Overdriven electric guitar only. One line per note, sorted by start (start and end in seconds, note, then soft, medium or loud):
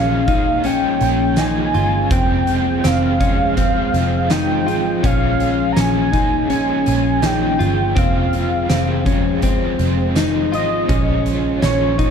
0.00 0.29 A#2 medium
0.00 0.29 F3 medium
0.00 0.29 G#3 medium
0.00 0.29 C#4 medium
0.00 0.27 F4 medium
0.28 0.65 C#4 soft
0.28 0.65 F4 medium
0.32 0.64 G#3 soft
0.64 1.01 F3 medium
0.64 1.02 G#3 medium
0.64 1.02 C#4 medium
0.64 1.00 F4 medium
1.01 1.38 G#3 soft
1.01 1.38 C#4 medium
1.01 1.38 F4 soft
1.37 1.74 A#2 medium
1.37 1.75 F3 medium
1.37 1.75 G#3 medium
1.37 1.75 C#4 medium
1.37 1.73 F4 medium
1.74 2.11 G#3 soft
1.74 2.12 C#4 soft
1.74 2.11 F4 medium
2.11 2.48 F2 medium
2.11 2.48 C3 medium
2.11 2.48 F3 medium
2.11 2.48 G#3 medium
2.11 2.48 C4 medium
2.11 2.46 F4 medium
2.47 2.83 F3 soft
2.47 2.84 G#3 soft
2.47 2.84 C4 medium
2.47 2.84 F4 medium
2.84 3.21 F2 medium
2.84 3.21 C3 medium
2.84 3.21 F3 medium
2.84 3.21 G#3 medium
2.84 3.20 C4 medium
2.84 3.19 F4 medium
3.20 3.54 F3 soft
3.20 3.55 G#3 soft
3.20 3.57 C4 soft
3.20 3.57 F4 medium
3.56 3.93 F3 medium
3.56 3.94 G#3 medium
3.56 3.93 C4 medium
3.56 3.91 F4 medium
3.92 4.29 F3 soft
3.92 4.29 G#3 medium
3.92 4.30 C4 medium
3.92 4.30 F4 medium
4.29 4.67 F2 medium
4.29 4.67 C3 medium
4.29 4.67 F3 medium
4.29 4.67 G#3 medium
4.29 4.66 C4 medium
4.29 4.65 F4 loud
4.66 5.02 F3 soft
4.66 5.02 G#3 soft
4.66 5.03 C4 medium
4.66 5.03 F4 soft
5.02 5.40 A#2 medium
5.02 5.40 F3 medium
5.02 5.40 G#3 medium
5.02 5.40 C#4 medium
5.02 5.37 F4 medium
5.39 5.76 C#4 medium
5.39 5.76 F4 medium
5.43 5.76 G#3 soft
5.76 6.13 A#2 medium
5.76 6.13 F3 medium
5.76 6.14 G#3 medium
5.76 6.13 C#4 medium
5.76 6.12 F4 medium
6.13 6.50 G#3 soft
6.13 6.51 C#4 soft
6.13 6.50 F4 medium
6.49 6.86 F3 medium
6.49 6.87 G#3 medium
6.49 6.87 C#4 medium
6.49 6.85 F4 medium
6.86 7.23 C#4 soft
6.86 7.23 F4 medium
6.90 7.23 G#3 soft
7.23 7.60 A#2 medium
7.23 7.60 F3 medium
7.23 7.60 G#3 medium
7.23 7.59 C#4 medium
7.23 7.57 F4 medium
7.59 7.96 G#3 soft
7.59 7.97 C#4 soft
7.59 7.96 F4 medium
7.96 8.33 F2 medium
7.96 8.33 C3 medium
7.96 8.33 F3 medium
7.96 8.34 G#3 medium
7.96 8.33 C4 medium
7.96 8.31 F4 medium
8.32 8.69 F3 soft
8.32 8.69 G#3 soft
8.32 8.70 C4 medium
8.32 8.69 F4 medium
8.69 9.06 F2 medium
8.69 9.06 C3 medium
8.69 9.07 F3 medium
8.69 9.07 G#3 medium
8.69 9.05 C4 medium
8.69 9.04 F4 medium
9.05 9.42 F3 medium
9.05 9.42 G#3 soft
9.05 9.43 C4 medium
9.05 9.42 F4 medium
9.43 9.79 F3 medium
9.43 9.80 G#3 medium
9.43 9.79 C4 medium
9.43 9.77 F4 medium
9.78 10.16 F3 medium
9.78 10.16 G#3 soft
9.78 10.16 C4 medium
9.78 10.15 F4 medium
10.16 10.53 F2 medium
10.16 10.53 C3 loud
10.16 10.53 F3 medium
10.16 10.53 G#3 medium
10.16 10.53 C4 loud
10.16 10.51 F4 medium
10.53 10.89 F3 soft
10.53 10.89 G#3 soft
10.53 10.90 C4 medium
10.53 10.89 F4 medium
10.89 11.26 A#2 medium
10.89 11.26 F3 medium
10.89 11.27 G#3 medium
10.89 11.26 C#4 medium
10.89 11.24 F4 medium
11.26 11.62 G#3 soft
11.26 11.63 C#4 soft
11.26 11.62 F4 medium
11.62 11.99 A#2 medium
11.62 11.99 F3 medium
11.62 12.00 G#3 medium
11.62 11.99 C#4 medium
11.62 11.97 F4 medium
11.98 12.10 G#3 soft
11.98 12.10 C#4 medium
11.98 12.10 F4 soft